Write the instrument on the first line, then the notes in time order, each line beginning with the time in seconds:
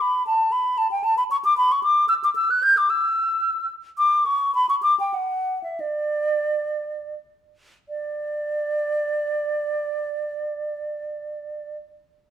flute
0.01 B5
0.27 A5
0.52 B5
0.78 A5
0.91 G5
1.04 A5
1.18 B5
1.31 C#6
1.45 D6
1.57 B5
1.72 C#6
1.83 D6
2.09 E6
2.24 D6
2.36 E6
2.51 F#6
2.63 G6
2.77 D6
2.90 E6
3.98 D6
4.26 C#6
4.55 B5
4.69 C#6
4.83 D6
5.00 G5
5.14 F#5
5.63 E5
5.80 D5
7.89 D5